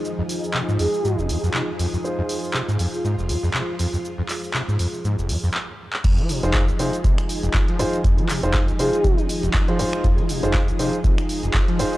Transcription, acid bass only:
X:1
M:4/4
L:1/16
Q:"Swing 16ths" 1/4=120
K:Fm
V:1 name="Acid bass" clef=bass
z F,, z2 C, A,, F,, z A,, F,,, F,, F,, C, z F,, F,, | z F,, z2 C, A,, F,, z A,, F,,, F,, F,, C, z F,, F,, | z F,, z2 C, A,, F,, z A,, F,,, F,, F,, z4 | F,, F, C, F,,,2 _G,, C, z C, z2 F,,, F,, F, E,, z |
F,, F, C, F,,,2 _G,, C, z C, z2 F,,, F,, F, E,, z | F,, F, C, F,,,2 _G,, C, z C, z2 F,,, F,, F, E,, z |]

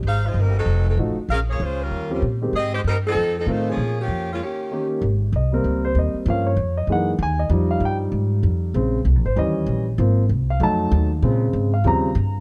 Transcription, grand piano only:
X:1
M:4/4
L:1/8
Q:"Swing" 1/4=193
K:Ab
V:1 name="Grand piano"
z6 [F,=A,E_G] z | z4 z [F,CDG] z [E,A,CG] | z6 [E,=A,CF]2 | z6 [E,B,DG]2 |
z2 e B2 c e z | f d2 e _g z a e- | e f g z4 z | z3 c e3 z |
z3 f =a3 z | z3 f b3 z |]
V:2 name="Grand piano" clef=bass
z8 | z8 | z8 | z8 |
z3 [G,B,C]4- [G,B,C] | [F,B,D] z3 [_F,A,B,E] z3 | [F,G,E]8 | [D,A,C] z3 [_F,G,D]3 z |
[F,B,C] z3 [_G,=A,E]3 z | [D,A,C]3 z [D,F,G,C] z3 |]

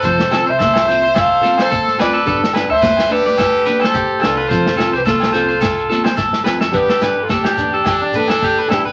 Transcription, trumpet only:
X:1
M:4/4
L:1/16
Q:"Swing 16ths" 1/4=107
K:Gmix
V:1 name="Trumpet"
A3 c4- c c3 A3 B2- | B z2 c3 G4- G A3 F2- | F3 G F2 F6 z4 | G3- G/2 F/2 D4 D2 D4 E2 |]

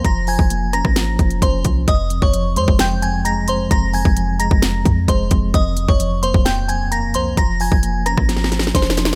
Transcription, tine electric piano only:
X:1
M:4/4
L:1/8
Q:1/4=131
K:Fm
V:1 name="Tine electric piano" clef=bass
F, F, B, D F, F, D F, | F,, F,, F, A, F,, F,, A, F,, | F,, F,, F, A, F,, F,, A, F,, | F,, F,, F, B, F,, F,, B, F,, |
F, F, B, D F, F, D F, |]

